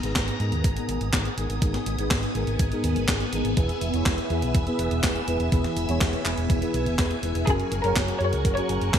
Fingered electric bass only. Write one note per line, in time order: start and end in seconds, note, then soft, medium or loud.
0.03 0.14 G#1 medium
0.16 0.26 G#1 medium
0.40 0.51 G#2 medium
0.52 0.63 D#2 medium
0.64 0.75 G#1 loud
0.89 0.99 G#1 medium
1.01 1.11 G#1 medium
1.13 1.24 G#1 loud
1.37 1.48 G#1 medium
1.50 1.60 G#1 medium
1.62 1.73 G#1 loud
1.86 1.97 G#1 medium
1.99 2.09 G#1 medium
2.11 2.21 G#1 loud
2.35 2.46 G#1 medium
2.47 2.58 G#1 medium
2.60 2.70 G#1 loud
2.84 2.94 D#2 medium
2.96 3.07 G#1 medium
3.08 3.19 G#1 loud
3.33 3.43 G#1 medium
3.45 3.55 G#1 medium
3.57 3.68 E1 loud
3.81 3.92 E1 medium
3.94 4.04 E1 medium
4.06 4.16 E1 loud
4.30 4.41 E2 medium
4.42 4.53 B1 medium
4.55 4.65 E1 loud
4.79 4.90 E1 medium
4.91 5.02 E1 medium
5.03 5.14 E1 loud
5.28 5.38 E1 medium
5.40 5.50 E1 medium
5.52 5.63 E1 loud
5.76 5.87 E1 medium
5.89 5.99 E1 medium
6.01 6.12 E1 loud
6.25 6.36 E1 medium
6.38 6.48 E1 medium
6.50 6.60 E1 loud
6.74 6.85 B1 medium
6.86 6.97 E1 medium
6.99 7.09 E1 medium
7.23 7.33 E1 medium
7.35 7.46 E1 medium
7.47 7.58 F#1 loud
7.72 7.82 F#1 medium
7.84 7.94 F#1 medium
7.96 8.07 F#1 loud
8.20 8.31 F#2 medium
8.33 8.43 C#2 medium
8.45 8.55 F#1 loud
8.69 8.80 F#1 medium
8.81 8.92 F#1 medium
8.94 8.99 F#1 loud